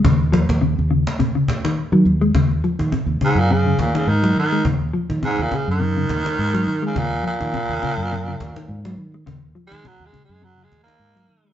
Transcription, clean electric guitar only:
X:1
M:4/4
L:1/16
Q:"Swing 16ths" 1/4=104
K:Ebdor
V:1 name="Clean electric guitar" clef=bass
D,2 F,2 C,2 D,2 C, D,2 E,2 G,2 A, | D,2 F,2 C,2 D,2 C, D,2 E,2 G,2 A, | D,2 F,2 C,2 D,2 C, D,2 E,2 G,2 A, | D,2 F,2 C,2 D,2 C, D,2 E,2 G,2 z |
D,2 F,2 C,2 D,2 C, D,2 E,2 G,2 A, |]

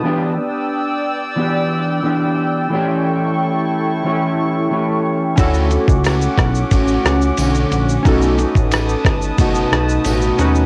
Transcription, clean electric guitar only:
X:1
M:4/4
L:1/8
Q:1/4=90
K:D
V:1 name="Clean electric guitar"
[E,B,DG] [B,DG]3 [E,B,DG]2 [E,B,DG]2 | [E,A,CG]4 [E,A,CG]2 [E,A,CG]2 | [D,A,CF] [A,CF]3 [A,CF]2 [D,A,CF]2 | [B,,A,^DF] [A,DF]3 [B,,A,DF]2 [B,,A,DF]2 |]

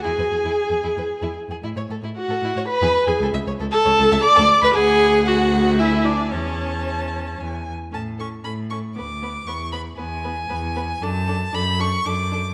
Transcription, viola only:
X:1
M:3/4
L:1/16
Q:1/4=115
K:A
V:1 name="Viola"
G8- G2 z2 | z4 F4 B3 G | z4 A4 d3 B | G4 F4 E2 D2 |
C8 z4 | C2 C2 C2 C2 B,2 B,2 | B,2 B,2 B,2 B,2 B,2 B,2 | D2 D2 D2 D2 D2 D2 |]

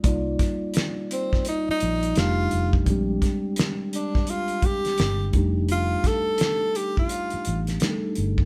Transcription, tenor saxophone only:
X:1
M:4/4
L:1/16
Q:"Swing 16ths" 1/4=85
K:Fdor
V:1 name="Tenor saxophone"
z6 C2 E E3 F3 z | z6 D2 F2 G4 z2 | F2 =A4 G F4 z4 z |]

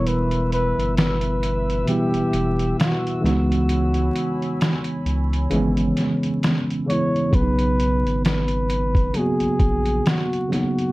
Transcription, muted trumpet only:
X:1
M:4/4
L:1/8
Q:"Swing 16ths" 1/4=66
K:B
V:1 name="Muted trumpet"
B B B2 =G2 F F- | F3 z4 c | B2 B2 G2 F F |]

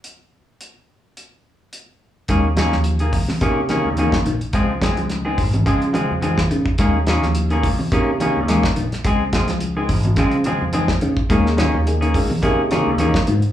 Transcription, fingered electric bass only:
X:1
M:4/4
L:1/16
Q:"Swing 16ths" 1/4=107
K:Dblyd
V:1 name="Fingered electric bass" clef=bass
z16 | E,,3 E,,3 D,, z C,3 E,,2 z B,,, z | D,,2 z D,,3 A,,,2 D,2 z F,,2 z D, z | E,,3 E,,3 D,, z C,3 E,,2 z B,,, z |
D,,2 z D,,3 A,,,2 D,2 z F,,2 z D, z | E,,3 E,,3 D,, z C,3 E,,2 z A,, z |]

